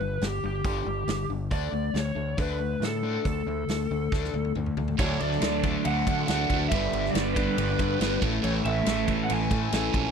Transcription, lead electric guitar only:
Already playing: B4
0.24 G4
0.46 G4
1.52 D5
1.98 C#5
2.40 B4
2.85 A4
3.28 A4
5.00 C#5
5.21 D5
5.86 F#5
6.28 F#5
6.69 E5
7.11 D5
7.34 B4
8.45 C#5
8.65 E5
9.24 F#5
9.32 G#5
9.75 G#5

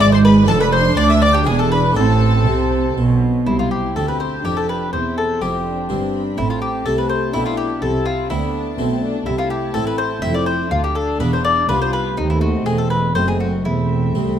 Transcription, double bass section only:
0.01 G#1
0.49 F1
0.98 D2
1.47 E1
1.97 A1
2.47 C2
2.97 B1
3.47 C2
3.96 D2
4.45 F1
4.93 E1
5.41 F1
5.90 G1
6.38 A1
6.86 C2
7.34 B1
7.82 C2
8.31 D2
8.79 B1
9.27 C2
9.75 A1
10.23 F1
10.71 D2
11.20 E1
11.69 C2
12.17 D#2
12.66 E1
13.14 F#1
13.65 E1
14.15 C2

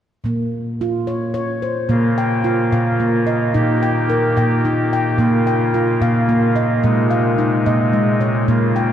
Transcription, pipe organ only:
1.90 C#3 A#3 F4
3.54 D#3 A#3 G4
5.20 C#3 F4
6.84 C3 G#3 D#4
8.49 C#3 A#3 F4

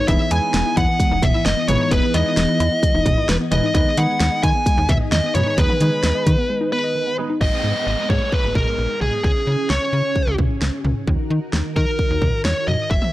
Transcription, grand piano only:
0.08 B3 D#4 E4 G#4 B4
0.31 B3 D#4 E4 G#4 B4
1.68 B3 D#4 E4 G#4 B4
1.91 B3 D#4 E4 G#4 B4
2.14 B3 D#4 E4 G#4 B4
3.52 B3 D#4 E4 G#4 B4
3.75 G#3 B3 D#4 G#4 B4
3.97 G#3 B3 D#4 G#4 B4
5.35 G#3 B3 D#4 G#4 B4
5.58 G#3 B3 D#4 G#4 B4
5.81 G#3 B3 D#4 G#4 B4
7.18 G#3 B3 D#4 G#4 B4

